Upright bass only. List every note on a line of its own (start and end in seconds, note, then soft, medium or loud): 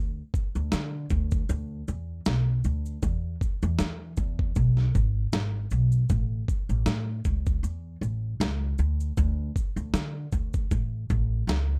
0.00 0.20 D2 medium
0.55 0.69 D2 medium
0.73 1.04 D3 loud
1.11 1.42 D2 medium
1.49 1.81 D2 loud
1.88 2.19 E2 medium
2.27 2.58 B1 medium
2.65 2.96 D2 medium
3.02 3.34 E2 loud
3.63 3.77 E2 loud
3.80 4.11 E3 medium
4.17 4.49 E2 medium
4.56 4.88 B1 medium
4.95 5.27 G#1 medium
5.33 5.65 G#1 medium
5.71 6.03 B1 medium
6.10 6.42 A1 medium
6.69 6.84 A1 medium
6.86 7.18 A2 medium
7.25 7.57 C#2 medium
7.63 7.95 E2 medium
8.01 8.33 A1 medium
8.40 8.72 C#2 loud
8.79 9.11 D2 medium
9.18 9.49 D2 loud
9.76 9.91 D2 medium
9.94 10.26 D3 loud
10.33 10.64 D2 medium
10.71 11.03 A1 medium
11.10 11.42 A1 loud
11.47 11.79 C#2 loud